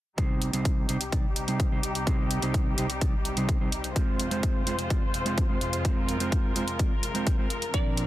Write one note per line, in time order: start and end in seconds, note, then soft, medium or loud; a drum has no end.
0.17 3.92 C2 medium
0.17 0.50 C3 medium
0.17 7.70 C3 medium
0.17 3.92 G3 medium
0.17 0.51 G3 medium
0.17 0.51 C4 medium
0.17 3.92 D#4 medium
0.17 0.51 D#4 medium
0.17 3.92 G4 medium
0.17 0.51 C5 loud
0.17 kick loud
0.17 closed hi-hat medium
0.42 closed hi-hat medium
0.53 0.86 C3 medium
0.53 0.86 G3 medium
0.53 0.86 C4 medium
0.53 0.86 D#4 medium
0.53 0.86 C5 loud
0.53 closed hi-hat medium
0.65 kick loud
0.65 closed hi-hat medium
0.88 0.96 C3 medium
0.88 0.96 G3 medium
0.88 0.96 C4 medium
0.88 0.97 D#4 medium
0.88 0.97 C5 medium
0.88 closed hi-hat medium
1.01 closed hi-hat medium
1.12 1.24 C3 medium
1.12 1.24 G3 medium
1.12 1.25 C4 medium
1.12 1.25 D#4 medium
1.12 1.25 D5 medium
1.12 kick loud
1.12 closed hi-hat medium
1.36 closed hi-hat medium
1.47 1.68 C3 medium
1.47 1.69 G3 medium
1.47 1.69 C4 medium
1.47 1.69 D#4 medium
1.47 1.69 C5 medium
1.47 closed hi-hat medium
1.60 kick loud
1.60 closed hi-hat medium
1.71 1.79 C3 medium
1.71 1.79 G3 medium
1.71 1.79 C4 medium
1.71 1.79 D#4 medium
1.71 1.79 C5 medium
1.83 closed hi-hat medium
1.95 closed hi-hat soft
2.06 2.39 C3 medium
2.06 2.39 G3 medium
2.06 2.40 C4 medium
2.06 2.40 D#4 medium
2.06 2.40 C5 loud
2.06 kick loud
2.06 closed hi-hat medium
2.31 closed hi-hat medium
2.42 2.75 C3 medium
2.42 2.75 G3 medium
2.42 2.75 C4 medium
2.42 2.75 D#4 medium
2.42 2.75 C5 medium
2.42 closed hi-hat medium
2.54 kick loud
2.54 closed hi-hat medium
2.77 2.85 C3 medium
2.77 2.85 G3 medium
2.77 2.85 C4 medium
2.77 2.86 D#4 medium
2.77 2.86 C5 medium
2.77 closed hi-hat medium
2.90 closed hi-hat medium
3.01 3.13 C3 medium
3.01 3.13 G3 medium
3.01 3.14 C4 medium
3.01 3.14 D#4 medium
3.01 3.14 D5 medium
3.01 kick loud
3.01 closed hi-hat medium
3.25 closed hi-hat medium
3.36 3.57 C3 medium
3.36 3.58 G3 medium
3.36 3.58 C4 medium
3.36 3.58 D#4 medium
3.36 3.58 C5 medium
3.36 closed hi-hat medium
3.49 kick loud
3.49 closed hi-hat medium
3.60 3.68 C3 medium
3.60 3.68 G3 medium
3.60 3.68 C4 medium
3.60 3.68 D#4 medium
3.60 3.68 C5 medium
3.72 closed hi-hat medium
3.84 closed hi-hat soft
3.95 7.70 F2 medium
3.95 4.28 G#3 medium
3.95 7.70 G#3 medium
3.95 4.29 C4 medium
3.95 7.70 F4 medium
3.95 4.29 F4 medium
3.95 5.83 C5 medium
3.95 4.29 C5 loud
3.95 kick loud
3.95 closed hi-hat medium
4.20 closed hi-hat medium
4.31 4.64 G#3 medium
4.31 4.64 C4 medium
4.31 4.64 F4 medium
4.31 4.64 C5 loud
4.31 closed hi-hat medium
4.43 kick loud
4.43 closed hi-hat medium
4.66 4.74 G#3 medium
4.66 4.74 C4 medium
4.66 4.74 F4 medium
4.66 4.75 C5 loud
4.66 closed hi-hat medium
4.79 closed hi-hat soft
4.90 5.02 G#3 medium
4.90 5.02 C4 medium
4.90 5.03 F4 medium
4.90 5.03 D5 medium
4.90 kick loud
4.90 closed hi-hat medium
5.14 closed hi-hat medium
5.25 5.46 G#3 medium
5.25 5.47 C4 medium
5.25 5.47 F4 medium
5.25 5.47 C5 medium
5.25 closed hi-hat soft
5.38 kick loud
5.38 closed hi-hat medium
5.49 5.57 G#3 medium
5.49 5.57 C4 medium
5.49 5.57 F4 medium
5.49 5.57 C5 medium
5.61 closed hi-hat medium
5.73 closed hi-hat soft
5.84 6.17 G#3 medium
5.84 6.17 C4 medium
5.84 6.18 F4 medium
5.84 8.07 A#4 medium
5.84 6.18 C5 loud
5.84 kick loud
5.84 closed hi-hat medium
6.09 closed hi-hat medium
6.20 6.53 G#3 medium
6.20 6.53 C4 medium
6.20 6.53 F4 medium
6.20 6.53 C5 loud
6.20 closed hi-hat soft
6.32 kick loud
6.32 closed hi-hat medium
6.55 6.63 G#3 medium
6.55 6.63 C4 medium
6.55 6.63 F4 medium
6.55 6.64 C5 loud
6.55 closed hi-hat medium
6.68 closed hi-hat soft
6.79 6.91 G#3 medium
6.79 6.91 C4 medium
6.79 6.92 F4 medium
6.79 6.92 D5 medium
6.79 kick loud
6.79 closed hi-hat medium
7.03 closed hi-hat medium
7.14 7.35 G#3 medium
7.14 7.36 C4 medium
7.14 7.36 F4 medium
7.14 7.36 C5 medium
7.14 closed hi-hat soft
7.27 kick loud
7.27 closed hi-hat medium
7.38 7.46 G#3 medium
7.38 7.46 C4 medium
7.38 7.46 F4 medium
7.38 7.46 C5 medium
7.50 closed hi-hat medium
7.62 closed hi-hat soft
7.73 8.06 A#2 medium
7.73 8.07 A#2 medium
7.73 8.06 F3 medium
7.73 8.07 F3 medium
7.73 8.07 C4 medium
7.73 8.07 D4 medium
7.73 8.07 A#4 loud
7.73 7.89 D5 medium
7.73 kick loud
7.73 closed hi-hat medium
7.97 closed hi-hat medium